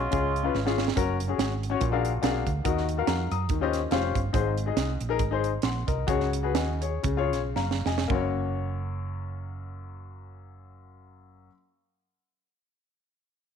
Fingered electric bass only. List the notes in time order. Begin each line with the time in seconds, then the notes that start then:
0.13 C#2
0.54 G#1
0.97 F#1
1.38 G#1
1.81 A#1
2.23 B1
2.47 D2
2.65 D#2
3.07 F2
3.31 F#2
3.50 D#2
3.91 F1
4.16 G1
4.34 G#1
4.76 C2
5.01 A#1
5.20 G#1
5.63 A#1
5.88 C2
6.08 C#2
6.56 D#2
7.04 C#2
7.33 B1
7.56 F#1
7.86 F1
8.10 F#1